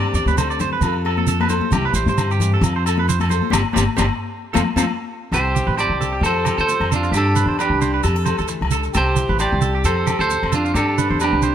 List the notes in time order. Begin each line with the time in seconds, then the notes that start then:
Already playing: G2 G3 C4 D4 G4 D5
0.14 E2 D4 D5, shekere
0.26 D2 B4, high conga, shekere
0.37 G3 A4 C5, low agogo, shekere
0.50 D5, shekere
0.60 C5, muted steel-string acoustic guitar stroke, low conga, shekere
0.73 B4
0.81 F2 F3 C4 F4 A4, low agogo, shekere
1.05 A4, low agogo
1.17 A4, high conga
1.27 C4 A4, shekere
1.40 B4, high conga, low agogo
1.49 A4 C5, low conga, shekere
1.61 high conga
1.71 C2 C3 G3 C4 E4 G4, low conga, low agogo, shekere
1.75 G4
1.85 B4
1.93 A1 E4 C5, shekere
2.06 G2 C5, high conga, shekere
2.18 D3, low agogo, shekere
2.31 G4, shekere
2.40 E3, low conga, shekere
2.54 A4
2.61 F2 F3 F4, low agogo, shekere
2.76 C5
2.86 A4, low agogo, shekere
2.98 B4, high conga
3.08 C4 C5, shekere
3.20 A4, high conga, low agogo, shekere
3.29 A4 C5, low conga, shekere
3.42 high conga
3.50 G1 C4 D4 G4 C5 D5, high conga, low agogo, shekere
3.73 G1 C4 D4 G4 C5 D5, high conga, low agogo, shekere
3.96 G1 C4 D4 G4 C5 D5, high conga, low agogo, shekere
4.53 F2 A3 C4 F4 A4 C5, high conga, low agogo, shekere
4.76 F2 A3 C4 F4 A4 C5, high conga, low agogo, shekere
5.32 C2 C3 G3 C4 E4 G4 A4 C5, low agogo, shekere
5.55 E4 G4, shekere
5.67 A1 B4
5.77 G3 G4 C5 D5, low agogo, shekere
5.89 C2
6.01 G4 A4, shekere
6.13 G4
6.21 F2 F3 C4 A4, low agogo, shekere
6.25 F4 A4 C5
6.45 G4 A4, low agogo, shekere
6.57 D2 A4 C5, shekere
6.67 C4 C5, shekere
6.80 F2, low agogo
6.91 C4 D4 A4, shekere
6.96 F4
7.03 F4, shekere
7.11 G2 D4 G4, low agogo, shekere
7.16 G2 D4 G4 A4
7.36 D4 B4, shekere
7.46 E2 C5
7.59 G3 D4 G4 B4, low agogo, shekere
7.69 C2
7.81 D4 C5, shekere
7.94 B4
8.03 F2 F3 G4 A4, low agogo, shekere
8.16 A4
8.25 A4 C5, low agogo, shekere
8.38 D2 A4, shekere
8.48 E3, muted clean electric guitar stroke, shekere
8.61 C#2, low agogo
8.71 D3 A4, shekere
8.83 shekere
8.93 C2 C3 G4 A4, low agogo, shekere
8.97 C5
9.16 E4, muted clean electric guitar stroke, shekere
9.29 A1 B4
9.39 G3 G4 C5 D5, low agogo, shekere
9.52 C2
9.61 G4 A4, shekere
9.75 G4
9.84 F2 F3 A4 C5, low agogo, shekere
9.88 A4
10.07 G4 A4, low agogo, shekere
10.19 D2 A4 C5, shekere
10.30 C4 C5, shekere
10.43 F2, low agogo
10.52 C4 D4 F4 A4, shekere
10.65 F4, shekere
10.74 G2 G3 C4 D4 G4 A4, low agogo, shekere
10.78 G4
10.98 D4 B4, shekere
11.10 E2 C5
11.20 G3 D4 G4 B4, low agogo, shekere
11.32 C2
11.42 D4 C5, shekere